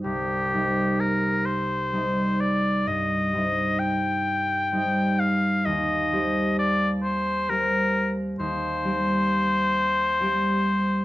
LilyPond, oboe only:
\new Staff \with { instrumentName = "Oboe" } { \time 12/8 \key c \minor \tempo 4. = 43 g'4 bes'8 c''4 d''8 ees''4 g''4. f''8 | ees''4 d''8 c''8 bes'8 r8 c''2. | }